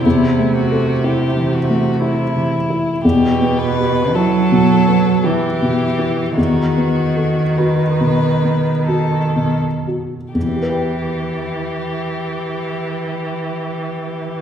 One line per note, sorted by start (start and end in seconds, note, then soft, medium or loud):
0.05 3.00 E2 soft
0.05 2.49 C3 medium
0.05 0.54 E4 soft
0.39 0.91 A3 soft
0.56 1.06 F#4 soft
0.72 1.24 A4 soft
1.04 1.57 E4 soft
1.04 1.55 G4 soft
1.37 1.90 E3 soft
1.53 2.03 F#4 soft
1.70 2.23 A3 soft
2.02 2.55 E4 soft
2.02 3.02 E4 soft
2.36 2.90 E3 soft
2.70 3.04 E4 soft
3.05 6.34 E2 soft
3.05 4.16 B2 medium
3.05 3.60 G4 soft
3.41 4.00 B3 soft
3.58 4.17 B4 soft
3.78 4.37 G4 soft
4.15 5.26 F#3 medium
4.15 4.74 E4 soft
4.15 5.26 A4 soft
4.52 5.10 B2 soft
4.88 5.46 B3 soft
5.24 6.38 E3 soft
5.24 5.84 E4 soft
5.24 6.37 G4 soft
5.62 6.22 B2 soft
5.99 6.37 E4 soft
6.37 10.31 E2 soft
6.37 9.59 D#3 soft
6.37 7.59 F#4 soft
6.77 7.41 B3 soft
7.16 7.83 A4 soft
7.58 8.26 F#4 soft
7.58 8.88 B4 soft
8.01 8.70 B2 soft
8.44 9.17 B3 soft
8.88 9.67 F#4 soft
8.88 9.60 A4 soft
9.36 10.16 B2 soft
9.87 10.35 F#4 soft
10.34 14.41 E2 soft
10.34 14.41 E3 soft
10.34 14.41 G4 soft
10.42 14.41 E3 soft
10.49 14.41 B3 soft
10.55 14.41 G4 soft
10.63 14.41 B4 soft
10.70 14.41 G5 soft